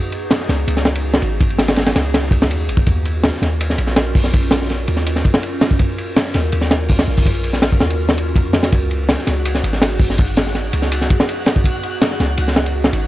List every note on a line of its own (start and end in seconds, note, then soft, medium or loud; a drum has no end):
0.00 0.83 B3 medium
0.00 0.83 D#4 medium
0.00 0.83 F#4 medium
0.00 0.83 G#4 loud
0.12 ride medium
0.31 snare loud
0.31 ride medium
0.41 snare soft
0.49 0.66 C#2 medium
0.49 snare soft
0.49 ride medium
0.68 1.21 C#2 medium
0.68 ride medium
0.77 snare soft
0.85 1.38 B3 loud
0.85 1.38 D#4 medium
0.85 1.38 F#4 medium
0.85 1.38 G#4 loud
0.85 snare loud
0.95 ride medium
1.14 snare loud
1.22 1.94 G#1 medium
1.22 ride medium
1.40 2.30 B3 medium
1.40 2.30 D#4 medium
1.40 2.30 F#4 medium
1.40 2.30 G#4 loud
1.40 kick loud
1.40 ride medium
1.50 ride soft
1.59 snare loud
1.59 ride medium
1.68 snare loud
1.68 ride medium
1.76 snare loud
1.76 ride medium
1.86 snare loud
1.86 ride medium
1.96 2.31 C#2 medium
1.96 snare loud
1.96 ride medium
2.14 snare loud
2.14 ride medium
2.23 snare soft
2.31 2.52 C#2 medium
2.31 kick loud
2.31 ride medium
2.42 snare loud
2.51 2.70 D#2 medium
2.51 ride medium
2.69 2.85 G#1 medium
2.69 ride medium
2.77 kick loud
2.87 3.31 D#2 loud
2.87 3.76 C#4 medium
2.87 3.76 F4 medium
2.87 3.76 F#4 medium
2.87 3.76 A#4 medium
2.87 kick loud
2.87 ride medium
3.05 ride medium
3.23 snare loud
3.23 ride medium
3.33 snare soft
3.42 3.77 D#2 medium
3.42 snare medium
3.42 ride medium
3.60 ride medium
3.70 snare soft
3.78 4.14 A#1 medium
3.78 4.31 C#4 loud
3.78 4.31 F4 medium
3.78 4.31 F#4 medium
3.78 4.31 A#4 loud
3.78 ride medium
3.87 snare soft
3.96 snare loud
3.96 ride medium
4.15 4.87 A#1 medium
4.15 kick loud
4.15 open hi-hat medium
4.24 snare medium
4.33 5.22 C#4 medium
4.33 5.22 F4 medium
4.33 5.22 F#4 medium
4.33 5.22 A#4 loud
4.33 kick loud
4.33 ride medium
4.43 ride soft
4.51 snare loud
4.51 ride medium
4.62 snare soft
4.70 snare soft
4.70 ride medium
4.88 5.23 D#2 medium
4.88 ride medium
4.96 snare soft
5.06 ride medium
5.16 snare soft
5.25 5.77 C#4 medium
5.25 5.77 F4 medium
5.25 5.77 F#4 medium
5.25 5.77 A#4 medium
5.25 kick medium
5.25 ride medium
5.34 snare loud
5.43 ride medium
5.61 snare loud
5.61 ride medium
5.71 kick loud
5.79 6.69 C#4 medium
5.79 6.69 F4 medium
5.79 6.69 F#4 medium
5.79 6.69 A#4 loud
5.79 kick loud
5.79 ride medium
5.98 ride medium
6.16 snare loud
6.16 ride medium
6.25 snare soft
6.34 6.51 D#2 medium
6.34 snare medium
6.34 ride medium
6.52 7.06 D#2 medium
6.52 ride medium
6.61 snare soft
6.71 7.24 C#4 loud
6.71 7.24 F4 medium
6.71 7.24 F#4 medium
6.71 7.24 A#4 loud
6.71 snare loud
6.71 ride medium
6.88 kick loud
6.88 open hi-hat medium
6.99 snare loud
6.99 ride medium
7.08 7.79 A#1 medium
7.17 kick medium
7.17 open hi-hat medium
7.26 8.15 C#4 medium
7.26 8.15 F4 medium
7.26 8.15 F#4 medium
7.26 8.15 A#4 loud
7.26 kick loud
7.26 ride medium
7.34 ride soft
7.44 ride medium
7.53 snare soft
7.62 snare loud
7.62 ride medium
7.72 kick medium
7.80 8.37 D#2 medium
7.80 snare loud
7.90 ride medium
8.09 snare loud
8.17 8.70 C#4 medium
8.17 8.70 F4 medium
8.17 8.70 F#4 medium
8.17 8.70 A#4 medium
8.17 ride medium
8.36 8.71 F2 medium
8.36 kick loud
8.36 ride medium
8.53 snare loud
8.53 ride medium
8.63 snare loud
8.63 ride medium
8.72 9.17 C#2 loud
8.72 9.61 B3 medium
8.72 9.61 D#4 medium
8.72 9.61 F#4 medium
8.72 9.61 G#4 loud
8.72 13.07 F#5 medium
8.72 13.07 F#6 medium
8.72 kick loud
8.72 ride medium
8.91 ride medium
9.09 snare loud
9.09 ride medium
9.19 snare soft
9.27 9.63 C#2 medium
9.27 snare medium
9.27 ride medium
9.45 ride medium
9.55 snare soft
9.64 9.99 G#1 medium
9.64 10.17 B3 medium
9.64 10.17 D#4 medium
9.64 10.17 F#4 medium
9.64 10.17 G#4 loud
9.64 ride medium
9.73 snare soft
9.82 snare loud
9.82 ride loud
10.00 10.72 G#1 medium
10.00 kick loud
10.00 open hi-hat medium
10.10 snare medium
10.18 11.08 B3 medium
10.18 11.08 D#4 medium
10.18 11.08 F#4 medium
10.18 11.08 G#4 loud
10.18 kick loud
10.18 ride medium
10.28 ride soft
10.37 snare loud
10.37 ride medium
10.47 snare soft
10.55 snare soft
10.55 ride medium
10.73 11.09 C#2 medium
10.73 ride medium
10.82 snare soft
10.92 ride loud
11.01 snare soft
11.10 11.63 B3 medium
11.10 11.63 D#4 medium
11.10 11.63 F#4 medium
11.10 11.63 G#4 medium
11.10 kick loud
11.10 ride medium
11.20 snare loud
11.29 ride loud
11.46 snare loud
11.46 ride medium
11.56 kick loud
11.64 12.54 B3 medium
11.64 12.54 D#4 medium
11.64 12.55 F#4 medium
11.64 12.54 G#4 medium
11.64 kick loud
11.64 ride medium
11.83 ride medium
12.01 snare loud
12.01 ride medium
12.11 snare soft
12.20 12.36 C#2 medium
12.20 snare medium
12.20 ride medium
12.37 12.92 C#2 medium
12.37 ride medium
12.48 snare soft
12.56 13.07 B3 medium
12.56 13.07 D#4 medium
12.56 13.07 F#4 medium
12.56 13.07 G#4 loud
12.56 snare loud
12.66 ride medium
12.84 snare loud
12.93 13.07 G#1 medium
12.93 ride medium